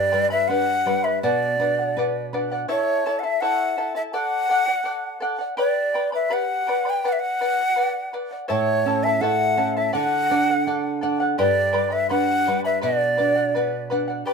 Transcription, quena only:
0.00 0.31 D5 loud
0.31 0.49 E5 loud
0.48 1.06 F#5 loud
1.04 1.22 E5 medium
1.23 2.28 D5 medium
2.70 3.21 C#5 loud
3.19 3.26 F#5 medium
3.24 3.42 E5 loud
3.41 3.95 F#5 loud
3.96 4.02 E5 medium
4.14 5.19 F#5 loud
5.59 6.10 D5 medium
6.15 6.35 E5 medium
6.33 6.91 F#5 loud
6.90 7.10 G5 loud
7.09 7.21 E5 medium
7.09 7.14 F#5 loud
7.20 8.14 F#5 loud
8.49 9.05 C#5 medium
9.04 9.23 E5 medium
9.21 9.79 F#5 loud
9.77 9.94 E5 medium
9.95 10.99 F#5 loud
11.39 11.94 D5 medium
11.92 12.10 E5 medium
12.10 12.61 F#5 loud
12.65 12.82 E5 medium
12.83 13.87 D5 loud
14.26 14.33 B4 medium

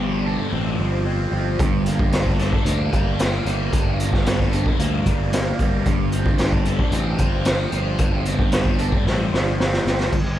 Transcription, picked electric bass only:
0.00 0.37 G1 medium
0.53 0.75 A1 medium
0.79 1.25 G1 medium
1.32 1.55 G1 medium
1.60 2.51 G1 medium
2.66 2.88 D2 medium
2.93 3.38 G1 medium
3.45 3.68 G1 medium
3.73 4.64 G1 medium
4.79 5.02 D2 medium
5.06 5.52 G1 medium
5.59 5.82 G1 medium
5.86 6.77 G1 medium
6.92 7.15 A1 medium
7.19 7.65 G1 medium
7.73 7.95 G1 medium
7.99 8.90 G1 medium
9.05 9.28 A1 medium
9.32 9.78 G1 medium
9.85 10.08 G1 medium
10.12 10.39 G1 medium

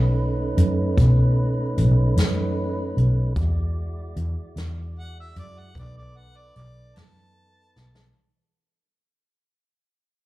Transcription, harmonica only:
4.99 5.16 F#5 medium
5.20 5.37 E5 medium
5.39 5.61 D5 medium
5.59 5.76 F#5 medium
5.79 5.96 D5 medium
5.98 6.18 D5 medium
6.17 6.39 F#5 medium
6.37 6.55 D5 medium
6.57 6.98 D5 medium
6.97 8.12 A5 medium

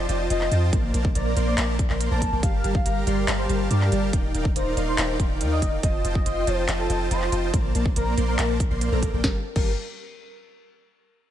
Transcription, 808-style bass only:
0.09 0.28 F1 loud
0.30 0.49 F1 loud
0.52 0.71 F2 loud
0.73 0.92 A#1 loud
0.94 1.13 A#1 medium
1.15 1.34 A#1 loud
1.36 1.56 A#1 loud
1.58 1.88 A#1 loud
1.90 2.09 A#1 loud
2.11 2.30 A#1 loud
2.32 2.41 A#1 loud
2.43 2.62 G1 loud
2.64 2.83 G1 loud
2.86 3.05 G1 loud
3.07 3.26 G1 loud
3.28 3.47 G1 loud
3.49 3.69 G1 loud
3.71 3.90 G2 loud
3.92 4.11 G1 loud
4.35 4.54 D#1 loud
4.56 4.75 D#1 loud
4.77 4.96 D#1 loud
4.98 5.17 D#1 loud
5.20 5.42 D#1 loud
5.41 5.64 D#2 loud
5.62 5.81 D#1 loud
5.83 6.03 F1 loud
6.05 6.24 F1 loud
6.26 6.45 F1 loud
6.47 6.66 F1 loud
6.68 6.88 F1 loud
6.90 7.09 F1 loud
7.11 7.30 F1 loud
7.32 7.51 F1 loud
7.54 7.73 A#1 loud
7.75 7.94 A#1 loud
7.96 8.15 A#1 loud
8.18 8.37 A#1 loud
8.39 8.69 A#1 loud
8.71 8.90 A#1 loud
8.92 9.11 A#1 loud
9.13 9.22 A#1 loud
9.24 9.36 G1 loud
9.56 9.76 G1 loud

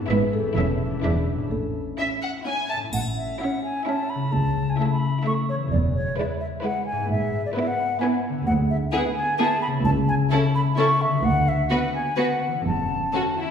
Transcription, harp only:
0.00 0.50 G#2 soft
0.00 0.52 B3 soft
0.00 0.47 E4 soft
0.06 0.56 G#4 soft
0.39 0.84 E2 soft
0.43 0.99 C#4 soft
0.48 0.93 E4 soft
0.52 1.03 A4 soft
0.85 1.44 E2 soft
0.90 1.46 D4 soft
0.94 1.41 E4 soft
0.99 1.51 B4 soft
1.33 2.74 A2 soft
1.38 2.79 C#4 soft
1.43 2.83 E4 soft
1.47 2.88 A4 soft
2.76 4.26 A2 soft
2.80 4.18 C#4 soft
2.85 4.23 E4 soft
2.89 4.27 A4 soft
4.15 5.65 C#3 soft
4.19 5.67 C#4 soft
4.24 5.61 E4 soft
4.28 5.71 A4 soft
5.54 7.03 E3 soft
5.58 6.95 B3 soft
5.63 7.00 E4 soft
5.67 8.41 G#4 soft
6.92 8.40 G#2 soft
6.96 8.32 B3 soft
7.01 8.37 E4 soft
7.05 9.85 B4 soft
8.29 9.78 D3 soft
8.33 9.80 B3 soft
8.38 9.75 E4 soft
8.42 9.84 G#4 soft
9.67 11.16 C#3 soft
9.71 11.19 C#4 soft
9.76 11.21 E4 soft
9.80 11.23 A4 soft
11.05 12.58 D3 soft
11.10 12.61 B3 soft
11.14 12.63 F#4 soft
11.19 12.65 B4 soft
12.47 13.43 E3 soft
12.52 13.51 C#4 soft
12.56 13.51 E4 soft
12.61 13.51 A4 soft
13.44 13.51 E3 soft

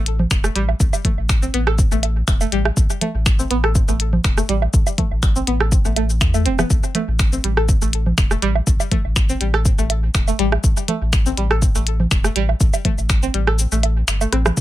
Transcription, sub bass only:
0.00 0.26 A1 medium
0.31 0.49 E1 medium
0.56 0.74 A1 loud
0.80 0.90 A1 loud
1.18 1.49 A1 medium
1.54 1.86 A1 loud
1.92 2.23 A1 loud
2.28 2.46 E1 loud
2.52 2.71 A1 loud
2.77 2.86 A1 loud
3.15 3.46 A1 medium
3.51 3.83 A1 medium
3.88 4.19 A1 medium
4.24 4.43 E1 medium
4.49 4.67 A1 loud
4.74 4.83 A1 loud
5.11 5.42 A1 medium
5.47 5.79 A1 loud
5.85 6.23 A1 medium
6.21 6.47 E2 medium
6.46 6.64 E1 loud
6.70 6.80 A1 medium
7.08 7.39 A1 medium
7.44 7.76 A1 loud
7.82 8.13 A1 medium
8.18 8.36 E1 loud
8.42 8.61 A1 loud
8.67 8.77 A1 loud
9.05 9.36 A1 medium
9.41 9.73 A1 loud
9.78 10.10 A1 medium
10.15 10.33 E1 medium
10.39 10.58 A1 loud
10.64 10.73 A1 medium
11.02 11.33 A1 medium
11.38 11.70 A1 loud
11.75 12.06 A1 medium
12.11 12.30 E1 loud
12.36 12.54 A1 loud
12.60 12.70 A1 loud
12.98 13.29 A1 medium
13.34 13.66 A1 loud
13.72 14.03 A1 medium
14.08 14.26 G1 medium
14.33 14.51 A1 loud
14.57 14.61 A1 loud

